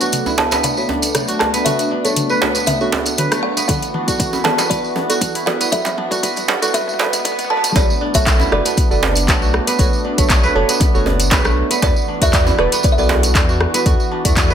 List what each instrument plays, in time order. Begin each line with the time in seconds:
Already playing: analog synth pad A3 B3 D4, kora B3 D4 B4, kalimba F#5
0.01 sub bass B1, synth stab B3 D4 F#4 A4 C#5, kora F#4, closed hi-hat, tambourine
0.12 closed hi-hat, mid tom, tambourine
0.26 kora E4, tambourine, djembe tone
0.38 sub bass F#1, kora B3, synth stab B3 D4 F#4 A4 C#5, kalimba A5, djembe slap
0.51 kora B3, closed hi-hat, tambourine, djembe slap
0.63 kalimba F#5, closed hi-hat, mid tom, tambourine
0.77 sub bass F#1, kora B3, synth stab B3 D4 F#4 A4 C#5, tambourine
0.89 kora D4, djembe tone
1.02 closed hi-hat, tambourine
1.15 sub bass B1, synth stab B3 D4 F#4 A4 C#5, kora D4, cross-stick, closed hi-hat, mid tom, tambourine
1.27 kora F#4, closed hi-hat, tambourine
1.39 kalimba A5, cross-stick, djembe slap
1.54 kora B3, closed hi-hat, tambourine
1.65 sub bass B1, synth stab B3 D4 F#4 A4 C#5, kora F#4, kalimba E5, closed hi-hat, mid tom, tambourine
1.79 closed hi-hat, tambourine
1.91 kora D4
2.05 sub bass B1, kora A3, synth stab B3 D4 F#4 A4 C#5, closed hi-hat, tambourine
2.16 closed hi-hat, mid tom, tambourine
2.29 kora B4, tambourine
2.42 sub bass F#1, synth stab B3 D4 F#4 A4 C#5, kora D4, kalimba F#5, djembe slap
2.55 kora B3, closed hi-hat, tambourine
2.66 kalimba E5, closed hi-hat, mid tom, tambourine, djembe tone
2.81 sub bass F#1, synth stab B3 D4 F#4 A4 C#5, kora F#4, tambourine
2.92 kora D4, djembe slap, djembe tone
3.06 closed hi-hat, tambourine
3.18 sub bass B1, synth stab B3 D4 F#4 A4 C#5, kora B4, closed hi-hat, mid tom, tambourine
3.31 kora A3, cross-stick, closed hi-hat, tambourine
3.43 kalimba F#5
3.57 kora B3, closed hi-hat, tambourine
3.68 sub bass E2, analog synth pad E3 F#4, kora B3, synth stab B3 E4 F#4 A4 D5, kalimba F#5, kick, closed hi-hat, mid tom, tambourine
3.82 closed hi-hat, tambourine
3.94 kora D4, mid tom
4.08 sub bass E2, synth stab B3 E4 F#4 A4 D5, kora F#4, kick, closed hi-hat, tambourine
4.20 kick, closed hi-hat, mid tom, tambourine
4.33 kora E4, tambourine, djembe tone
4.44 synth stab B3 E4 F#4 A4 D5, kora B3, kalimba A5, mid tom, djembe slap
4.58 kora B3, closed hi-hat, tambourine, djembe slap
4.70 synth stab B3 E4 F#4 D5, kora B3, kalimba D5, kick, closed hi-hat, mid tom, tambourine
4.84 sub bass B1, tambourine
4.96 kora D4, mid tom, djembe tone
5.09 synth stab B3 E4 F#4 A4 D5, kora F#4, closed hi-hat, tambourine
5.21 sub bass E2, kick, closed hi-hat, mid tom, tambourine
5.35 kora E4, closed hi-hat, tambourine
5.46 kora B3, synth stab B3 E4 F#4 A4 D5, kalimba F#5, mid tom, djembe slap
5.60 kora B3, closed hi-hat, tambourine
5.72 sub bass E2, synth stab B3 E4 F#4 A4 D5, kora B3, kalimba E5, kick, closed hi-hat, mid tom, tambourine
5.85 closed hi-hat, mid tom, tambourine, djembe slap
5.97 kora D4, mid tom
6.11 sub bass E2, synth stab B3 E4 F#4 A4 D5, kora F#4, kick, closed hi-hat, mid tom, tambourine
6.23 kora B3, synth stab B3 E4 F#4 A4 D5, kick, closed hi-hat, mid tom, tambourine
6.36 closed hi-hat, mid tom, tambourine
6.48 kora D4, kalimba F#5, mid tom, djembe slap
6.62 synth stab B3 E4 F#4 A4 D5, kora F#4, closed hi-hat, mid tom, tambourine
6.73 synth stab B3 E4 F#4 A4 D5, kora B3, kalimba E5, kick, closed hi-hat, mid tom, tambourine, swell, djembe tone
6.81 mid tom
6.87 sub bass B1, mid tom, tambourine
6.94 mid tom
6.99 kora B3, synth stab B3 E4 F#4 A4 D5, mid tom, djembe slap, djembe tone
7.06 mid tom
7.13 closed hi-hat, mid tom, tambourine
7.19 mid tom
7.25 sub bass E2, kora B3, synth stab B3 E4 F#4 A4 D5, kick, closed hi-hat, mid tom, tambourine
7.32 mid tom
7.39 closed hi-hat, mid tom, tambourine
7.44 mid tom
7.50 synth stab B3 E4 F#4 A4 D5, kora B3, kalimba A5, mid tom
7.57 mid tom
7.64 closed hi-hat, mid tom, tambourine
7.70 mid tom
7.75 sub bass B1, analog synth pad A3 B3 D4, synth stab B3 D4 F#4 A4 C#5, kora B3, kalimba D5, kick, closed hi-hat, tambourine, djembe slap
7.90 tambourine
8.01 kora D4
8.14 sub bass B1, synth stab B3 D4 F#4 A4 C#5, kora F#4, kalimba E5, kick, closed hi-hat, tambourine
8.27 kalimba F#5, kick, clap, closed hi-hat, tambourine
8.40 kora E4, tambourine, djembe tone
8.52 sub bass F#1, synth stab B3 D4 F#4 A4 D5, kora B3, kalimba D5, cross-stick
8.65 kora B3, closed hi-hat, tambourine
8.77 kick, closed hi-hat, tambourine
8.91 sub bass F#1, synth stab B3 D4 F#4 A4 D5, kora B3, tambourine
9.03 kora D4, djembe slap, djembe tone
9.15 closed hi-hat, tambourine
9.28 sub bass B1, synth stab B3 D4 F#4 A4, kora D4, kick, clap, closed hi-hat, tambourine
9.42 kora F#4, tambourine
9.54 cross-stick
9.67 kora B3, closed hi-hat, tambourine
9.79 sub bass B1, synth stab B3 D4 F#4 A4 C#5, kora F#4, kick, closed hi-hat, tambourine
9.93 tambourine
10.05 kora D4
10.18 sub bass B1, kora A3, synth stab B3 D4 F#4 A4 C#5, kick, closed hi-hat, tambourine
10.30 kick, clap, closed hi-hat, tambourine
10.43 kora B4, tambourine
10.55 sub bass F#1, synth stab B3 D4 F#4 A4 C#5, kora D4
10.69 kora B3, closed hi-hat, tambourine
10.80 kick, closed hi-hat, tambourine, djembe tone
10.94 sub bass F#1, synth stab B3 D4 F#4 A4 C#5, kora F#4, tambourine
11.06 kora D4, djembe tone
11.20 closed hi-hat, tambourine
11.31 sub bass B1, synth stab B3 D4 F#4 A4 C#5, kora B4, kick, clap, closed hi-hat, tambourine, djembe slap
11.44 kora A3, cross-stick, tambourine
11.71 kora B3, closed hi-hat, tambourine
11.82 sub bass E2, analog synth pad E3 F#4, synth stab B3 E4 F#4 A4 D5, kalimba D5, kick, closed hi-hat, tambourine, djembe slap
11.96 tambourine
12.08 kora D4
12.21 sub bass E2, synth stab B3 E4 F#4 A4 D5, kora F#4, kalimba E5, kick, closed hi-hat, tambourine
12.33 kalimba D5, kick, clap, closed hi-hat, tambourine
12.47 kora E4, tambourine, djembe tone
12.59 sub bass E1, synth stab B3 E4 F#4 A4 D5, kora B3, kalimba B4, cross-stick
12.72 kora B3, closed hi-hat, tambourine
12.83 kalimba D5, kick, closed hi-hat, tambourine
12.92 kalimba E5
12.98 sub bass B1, synth stab B3 E4 F#4 A4 D5, kora B3, kalimba D5, tambourine
13.09 kora D4, djembe slap, djembe tone
13.23 closed hi-hat, tambourine
13.35 sub bass E2, synth stab B3 E4 F#4 A4 D5, kora D4, kick, clap, closed hi-hat, tambourine
13.49 kora F#4, tambourine
13.61 cross-stick
13.74 kora B3, closed hi-hat, tambourine
13.86 sub bass E2, synth stab B3 E4 F#4 A4 D5, kora F#4, kick, closed hi-hat, tambourine
14.00 tambourine
14.11 kora D4
14.25 sub bass E2, kora A3, synth stab B3 E4 F#4 A4 D5, kick, closed hi-hat, tambourine
14.37 kick, clap, closed hi-hat, tambourine
14.50 kora B4, tambourine